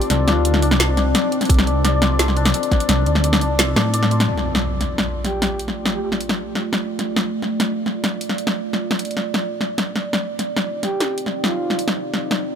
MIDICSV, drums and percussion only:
0, 0, Header, 1, 2, 480
1, 0, Start_track
1, 0, Tempo, 348837
1, 136, Time_signature, 4, 2, 24, 8
1, 17272, End_track
2, 0, Start_track
2, 0, Title_t, "Drums"
2, 21, Note_on_c, 9, 46, 64
2, 138, Note_on_c, 9, 40, 52
2, 138, Note_on_c, 9, 42, 76
2, 159, Note_off_c, 9, 46, 0
2, 276, Note_off_c, 9, 40, 0
2, 276, Note_off_c, 9, 42, 0
2, 380, Note_on_c, 9, 40, 76
2, 380, Note_on_c, 9, 42, 35
2, 517, Note_off_c, 9, 40, 0
2, 517, Note_off_c, 9, 42, 0
2, 619, Note_on_c, 9, 42, 64
2, 741, Note_on_c, 9, 40, 52
2, 757, Note_off_c, 9, 42, 0
2, 859, Note_on_c, 9, 46, 68
2, 879, Note_off_c, 9, 40, 0
2, 981, Note_on_c, 9, 40, 82
2, 996, Note_off_c, 9, 46, 0
2, 1100, Note_on_c, 9, 38, 113
2, 1100, Note_on_c, 9, 42, 78
2, 1119, Note_off_c, 9, 40, 0
2, 1237, Note_off_c, 9, 38, 0
2, 1237, Note_off_c, 9, 42, 0
2, 1338, Note_on_c, 9, 40, 54
2, 1338, Note_on_c, 9, 42, 38
2, 1476, Note_off_c, 9, 40, 0
2, 1476, Note_off_c, 9, 42, 0
2, 1579, Note_on_c, 9, 40, 76
2, 1579, Note_on_c, 9, 42, 60
2, 1717, Note_off_c, 9, 40, 0
2, 1717, Note_off_c, 9, 42, 0
2, 1818, Note_on_c, 9, 42, 38
2, 1941, Note_on_c, 9, 40, 54
2, 1941, Note_on_c, 9, 46, 67
2, 1956, Note_off_c, 9, 42, 0
2, 2000, Note_off_c, 9, 46, 0
2, 2000, Note_on_c, 9, 46, 52
2, 2057, Note_on_c, 9, 36, 117
2, 2061, Note_off_c, 9, 46, 0
2, 2061, Note_on_c, 9, 42, 78
2, 2061, Note_on_c, 9, 46, 46
2, 2078, Note_off_c, 9, 40, 0
2, 2123, Note_off_c, 9, 46, 0
2, 2123, Note_on_c, 9, 46, 36
2, 2182, Note_on_c, 9, 40, 85
2, 2194, Note_off_c, 9, 36, 0
2, 2198, Note_off_c, 9, 42, 0
2, 2260, Note_off_c, 9, 46, 0
2, 2300, Note_on_c, 9, 42, 36
2, 2320, Note_off_c, 9, 40, 0
2, 2437, Note_off_c, 9, 42, 0
2, 2540, Note_on_c, 9, 40, 57
2, 2540, Note_on_c, 9, 42, 67
2, 2677, Note_off_c, 9, 40, 0
2, 2677, Note_off_c, 9, 42, 0
2, 2777, Note_on_c, 9, 40, 81
2, 2777, Note_on_c, 9, 46, 69
2, 2914, Note_off_c, 9, 40, 0
2, 2914, Note_off_c, 9, 46, 0
2, 3018, Note_on_c, 9, 38, 113
2, 3018, Note_on_c, 9, 42, 79
2, 3141, Note_on_c, 9, 40, 55
2, 3156, Note_off_c, 9, 38, 0
2, 3156, Note_off_c, 9, 42, 0
2, 3255, Note_on_c, 9, 42, 37
2, 3278, Note_off_c, 9, 40, 0
2, 3378, Note_on_c, 9, 40, 84
2, 3378, Note_on_c, 9, 46, 71
2, 3393, Note_off_c, 9, 42, 0
2, 3496, Note_on_c, 9, 42, 64
2, 3515, Note_off_c, 9, 40, 0
2, 3515, Note_off_c, 9, 46, 0
2, 3620, Note_on_c, 9, 46, 69
2, 3634, Note_off_c, 9, 42, 0
2, 3735, Note_on_c, 9, 36, 59
2, 3737, Note_on_c, 9, 40, 56
2, 3737, Note_on_c, 9, 42, 37
2, 3757, Note_off_c, 9, 46, 0
2, 3858, Note_on_c, 9, 46, 72
2, 3873, Note_off_c, 9, 36, 0
2, 3875, Note_off_c, 9, 40, 0
2, 3875, Note_off_c, 9, 42, 0
2, 3975, Note_on_c, 9, 40, 84
2, 3975, Note_on_c, 9, 42, 80
2, 3995, Note_off_c, 9, 46, 0
2, 4112, Note_off_c, 9, 40, 0
2, 4112, Note_off_c, 9, 42, 0
2, 4216, Note_on_c, 9, 42, 37
2, 4339, Note_on_c, 9, 40, 57
2, 4354, Note_off_c, 9, 42, 0
2, 4457, Note_on_c, 9, 42, 68
2, 4477, Note_off_c, 9, 40, 0
2, 4580, Note_on_c, 9, 40, 85
2, 4594, Note_off_c, 9, 42, 0
2, 4698, Note_on_c, 9, 46, 67
2, 4717, Note_off_c, 9, 40, 0
2, 4835, Note_off_c, 9, 46, 0
2, 4939, Note_on_c, 9, 38, 117
2, 4939, Note_on_c, 9, 40, 57
2, 4939, Note_on_c, 9, 42, 79
2, 5076, Note_off_c, 9, 38, 0
2, 5076, Note_off_c, 9, 40, 0
2, 5076, Note_off_c, 9, 42, 0
2, 5179, Note_on_c, 9, 38, 60
2, 5179, Note_on_c, 9, 40, 89
2, 5179, Note_on_c, 9, 42, 37
2, 5317, Note_off_c, 9, 38, 0
2, 5317, Note_off_c, 9, 40, 0
2, 5317, Note_off_c, 9, 42, 0
2, 5417, Note_on_c, 9, 42, 67
2, 5540, Note_on_c, 9, 40, 57
2, 5554, Note_off_c, 9, 42, 0
2, 5659, Note_on_c, 9, 42, 39
2, 5678, Note_off_c, 9, 40, 0
2, 5781, Note_on_c, 9, 40, 82
2, 5781, Note_on_c, 9, 46, 69
2, 5797, Note_off_c, 9, 42, 0
2, 5919, Note_off_c, 9, 40, 0
2, 5919, Note_off_c, 9, 46, 0
2, 6021, Note_on_c, 9, 40, 47
2, 6158, Note_off_c, 9, 40, 0
2, 6259, Note_on_c, 9, 40, 76
2, 6396, Note_off_c, 9, 40, 0
2, 6614, Note_on_c, 9, 40, 47
2, 6614, Note_on_c, 9, 46, 58
2, 6751, Note_off_c, 9, 40, 0
2, 6751, Note_off_c, 9, 46, 0
2, 6856, Note_on_c, 9, 40, 76
2, 6993, Note_off_c, 9, 40, 0
2, 7218, Note_on_c, 9, 40, 51
2, 7218, Note_on_c, 9, 46, 60
2, 7355, Note_off_c, 9, 40, 0
2, 7355, Note_off_c, 9, 46, 0
2, 7457, Note_on_c, 9, 40, 78
2, 7457, Note_on_c, 9, 46, 61
2, 7595, Note_off_c, 9, 40, 0
2, 7595, Note_off_c, 9, 46, 0
2, 7698, Note_on_c, 9, 46, 59
2, 7816, Note_on_c, 9, 40, 49
2, 7836, Note_off_c, 9, 46, 0
2, 7954, Note_off_c, 9, 40, 0
2, 8056, Note_on_c, 9, 40, 70
2, 8194, Note_off_c, 9, 40, 0
2, 8420, Note_on_c, 9, 40, 49
2, 8539, Note_on_c, 9, 46, 55
2, 8558, Note_off_c, 9, 40, 0
2, 8660, Note_on_c, 9, 40, 69
2, 8676, Note_off_c, 9, 46, 0
2, 8797, Note_off_c, 9, 40, 0
2, 9018, Note_on_c, 9, 40, 50
2, 9156, Note_off_c, 9, 40, 0
2, 9257, Note_on_c, 9, 40, 70
2, 9394, Note_off_c, 9, 40, 0
2, 9618, Note_on_c, 9, 40, 47
2, 9618, Note_on_c, 9, 46, 56
2, 9756, Note_off_c, 9, 40, 0
2, 9756, Note_off_c, 9, 46, 0
2, 9858, Note_on_c, 9, 40, 69
2, 9996, Note_off_c, 9, 40, 0
2, 10216, Note_on_c, 9, 40, 47
2, 10354, Note_off_c, 9, 40, 0
2, 10456, Note_on_c, 9, 40, 69
2, 10456, Note_on_c, 9, 46, 58
2, 10593, Note_off_c, 9, 40, 0
2, 10593, Note_off_c, 9, 46, 0
2, 10817, Note_on_c, 9, 40, 47
2, 10955, Note_off_c, 9, 40, 0
2, 11059, Note_on_c, 9, 40, 68
2, 11059, Note_on_c, 9, 46, 59
2, 11197, Note_off_c, 9, 40, 0
2, 11197, Note_off_c, 9, 46, 0
2, 11298, Note_on_c, 9, 46, 58
2, 11414, Note_on_c, 9, 40, 48
2, 11435, Note_off_c, 9, 46, 0
2, 11535, Note_on_c, 9, 46, 55
2, 11551, Note_off_c, 9, 40, 0
2, 11654, Note_on_c, 9, 40, 70
2, 11672, Note_off_c, 9, 46, 0
2, 11792, Note_off_c, 9, 40, 0
2, 12017, Note_on_c, 9, 40, 46
2, 12154, Note_off_c, 9, 40, 0
2, 12256, Note_on_c, 9, 40, 67
2, 12374, Note_on_c, 9, 46, 57
2, 12394, Note_off_c, 9, 40, 0
2, 12453, Note_off_c, 9, 46, 0
2, 12453, Note_on_c, 9, 46, 45
2, 12532, Note_off_c, 9, 46, 0
2, 12532, Note_on_c, 9, 46, 36
2, 12614, Note_on_c, 9, 40, 44
2, 12670, Note_off_c, 9, 46, 0
2, 12751, Note_off_c, 9, 40, 0
2, 12854, Note_on_c, 9, 40, 67
2, 12992, Note_off_c, 9, 40, 0
2, 13219, Note_on_c, 9, 40, 46
2, 13357, Note_off_c, 9, 40, 0
2, 13458, Note_on_c, 9, 40, 66
2, 13458, Note_on_c, 9, 46, 56
2, 13595, Note_off_c, 9, 40, 0
2, 13595, Note_off_c, 9, 46, 0
2, 13699, Note_on_c, 9, 40, 46
2, 13837, Note_off_c, 9, 40, 0
2, 13941, Note_on_c, 9, 40, 69
2, 14079, Note_off_c, 9, 40, 0
2, 14298, Note_on_c, 9, 40, 46
2, 14298, Note_on_c, 9, 46, 60
2, 14435, Note_off_c, 9, 40, 0
2, 14435, Note_off_c, 9, 46, 0
2, 14538, Note_on_c, 9, 40, 67
2, 14675, Note_off_c, 9, 40, 0
2, 14903, Note_on_c, 9, 40, 49
2, 14903, Note_on_c, 9, 46, 60
2, 15041, Note_off_c, 9, 40, 0
2, 15041, Note_off_c, 9, 46, 0
2, 15142, Note_on_c, 9, 40, 68
2, 15142, Note_on_c, 9, 46, 61
2, 15280, Note_off_c, 9, 40, 0
2, 15280, Note_off_c, 9, 46, 0
2, 15380, Note_on_c, 9, 46, 59
2, 15498, Note_on_c, 9, 40, 49
2, 15517, Note_off_c, 9, 46, 0
2, 15636, Note_off_c, 9, 40, 0
2, 15739, Note_on_c, 9, 40, 72
2, 15876, Note_off_c, 9, 40, 0
2, 16102, Note_on_c, 9, 40, 49
2, 16220, Note_on_c, 9, 46, 59
2, 16239, Note_off_c, 9, 40, 0
2, 16342, Note_on_c, 9, 40, 69
2, 16358, Note_off_c, 9, 46, 0
2, 16479, Note_off_c, 9, 40, 0
2, 16699, Note_on_c, 9, 40, 49
2, 16837, Note_off_c, 9, 40, 0
2, 16937, Note_on_c, 9, 40, 70
2, 17075, Note_off_c, 9, 40, 0
2, 17272, End_track
0, 0, End_of_file